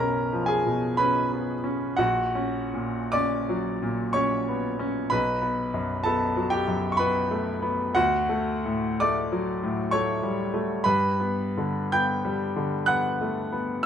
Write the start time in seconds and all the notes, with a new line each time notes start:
Already playing: B1 B2 B4 A#5 B5
0.00 C#4 A#4
0.33 F3
0.46 G#4 G#5
0.66 B2
0.97 C#4 B4 B5
1.32 B3
1.64 C#4
1.97 A#1 F#4 F#5
2.35 C#4
2.74 A#2
3.12 C#4 D5 D6
3.49 F#3
3.82 A#2
4.13 C#4 C#5 C#6
4.49 B3
4.79 C#4
5.10 B1 B4 B5
5.42 B3
5.74 F#2
6.04 B3 A4 A5
6.37 F#3
6.50 G4 G5
6.68 F#2
6.92 C#6
6.97 B3 B4 B5
7.31 A3
7.62 B3
7.95 D2 F#4 F#5
8.29 A3
8.66 A2
9.00 A3 D5 D6
9.32 F#3
9.63 A2
9.91 A3 C#5 C#6
10.23 G3
10.54 A3
10.84 G2 B4 B5
11.20 B3
11.57 D3
11.92 B3 G5 G6
12.25 G3
12.56 D3
12.86 B3 F#5 F#6
13.21 A3
13.52 B3